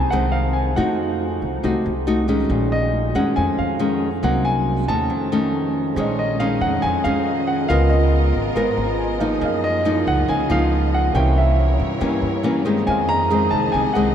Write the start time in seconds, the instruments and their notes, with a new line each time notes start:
Already playing: nylon-string guitar C3, grand piano G#5
0.10 upright bass C2, nylon-string guitar D#3 G#3 C4, grand piano F#5
0.32 grand piano F5
0.53 grand piano G#5
0.76 upright bass F2, nylon-string guitar F3 A3 D#4 F#4, grand piano F#5
1.42 upright bass C2
1.63 upright bass C2, nylon-string guitar C3 A3 D#4 F#4
1.86 upright bass C2
2.07 nylon-string guitar A3 D#4 F#4
2.28 nylon-string guitar D#3 G#3 C#4
2.50 upright bass A#1, nylon-string guitar A#2
2.72 grand piano D#5
3.15 upright bass F2, nylon-string guitar D#3 G#3 C#4, grand piano F#5
3.36 nylon-string guitar F2, upright bass F2, grand piano G#5
3.59 upright bass F2, grand piano F5
3.79 nylon-string guitar D#3 G#3 C#4
4.23 upright bass C2, nylon-string guitar C3 F#3 A#3 D#4, grand piano F#5
4.45 grand piano G#5
4.88 upright bass D#2, nylon-string guitar D#3 A3 C#4, grand piano A5
5.10 nylon-string guitar F2
5.32 nylon-string guitar D#3 A3 C#4
5.94 upright bass A#1, nylon-string guitar A#2 D#3 G#3, string section C#4 G#4 D#5, grand piano G#4 C5 C#5
5.98 nylon-string guitar C#4, grand piano D#5
6.19 grand piano D#5
6.40 nylon-string guitar D#3 G#3 C#4, grand piano F5
6.61 upright bass F2, grand piano F#5
6.82 nylon-string guitar F2, upright bass F2, grand piano G#5
7.04 upright bass F2, nylon-string guitar D#3 G#3 C#4, grand piano F5
7.47 grand piano F#5
7.66 upright bass C#2, nylon-string guitar C#3 B3 F4, string section B3 F4 A#4, grand piano A#4 F5
7.70 nylon-string guitar A#4, grand piano D#5 F5
7.90 grand piano D#5
8.34 upright bass G#1
8.56 upright bass G#1, nylon-string guitar G#2 B3 F4 A#4
8.77 upright bass G#1, grand piano A#5
8.98 grand piano G#5
9.19 nylon-string guitar F3 A#3 D#4, grand piano A#4 B4 D#5 F5
9.39 upright bass F#2, nylon-string guitar F#2, string section A#3 F4 G#4, grand piano G#4 A#4 D#5
9.45 grand piano F5
9.64 grand piano D#5
9.85 nylon-string guitar F3 A#3 D#4
10.07 upright bass C#2, grand piano F#5
10.28 upright bass C#2, nylon-string guitar C#3, grand piano G#5
10.50 upright bass C#2, nylon-string guitar F3 A#3 D#4, grand piano F5
10.94 grand piano F#5
11.11 upright bass C2, nylon-string guitar C3 E3 A#3, string section A#3 E4 A#4, grand piano G4 A#4 G5
11.15 nylon-string guitar C#4, string section C#5, grand piano C#5 E5
11.38 grand piano E5
11.79 upright bass G2
12.00 nylon-string guitar G2 E3 A#3 C#4, upright bass G2
12.22 upright bass G2
12.43 nylon-string guitar E3 A#3 C#4
12.65 nylon-string guitar D#3 G#3 C4
12.84 upright bass F2, nylon-string guitar F2, string section D#4 G#4 D#5, grand piano G#4 C5 G#5
12.88 grand piano D#5 F5
13.09 grand piano A#5
13.30 nylon-string guitar D#3 G#3 C4
13.51 upright bass C2, grand piano A5
13.72 upright bass C2, nylon-string guitar C3, grand piano G#5
13.93 upright bass C2, nylon-string guitar D#3 G#3 C4, grand piano F#5